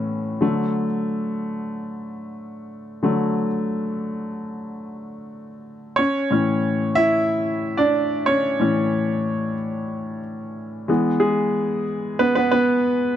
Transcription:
0.00 0.44 A2 soft
0.00 0.44 E3 soft
0.00 0.43 C#4 medium
0.41 0.85 D3 soft
0.41 0.85 F#3 soft
0.41 0.86 A3 medium
3.03 3.47 D3 soft
3.03 3.47 F#3 soft
3.03 3.47 A3 medium
5.96 6.30 C#4 medium
5.96 6.59 C#5 medium
6.31 7.25 A2 soft
6.31 7.25 E3 soft
6.31 7.26 C#4 soft
6.95 7.75 E4 medium
6.95 7.80 E5 loud
7.77 8.24 D4 medium
7.77 8.28 D5 medium
8.26 8.59 C#4 medium
8.26 10.19 C#5 medium
8.60 9.54 A2 soft
8.60 9.54 E3 soft
8.60 9.55 C#4 soft
10.88 11.83 E3 soft
10.88 11.19 G#3 soft
10.88 11.83 B3 medium
11.20 12.16 G#3 medium
11.20 12.22 G#4 medium
12.19 12.35 B3 medium
12.19 12.34 B4 medium
12.35 12.51 B3 medium
12.35 12.50 B4 medium
12.51 13.16 B3 medium
12.51 13.16 B4 medium

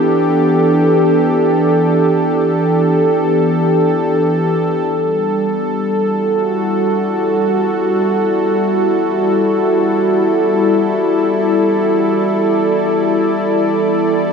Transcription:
0.00 4.90 E3 medium
0.00 4.90 B3 medium
0.00 6.54 B3 medium
0.00 7.37 D4 medium
0.00 4.90 G4 medium
0.00 14.33 A4 medium
0.00 4.91 D5 medium
4.91 14.33 E3 medium
4.91 14.33 G3 medium
4.91 14.33 B3 medium
5.95 14.33 E4 medium
5.99 14.33 F#4 medium
6.50 14.33 D5 medium
14.08 14.33 G4 medium

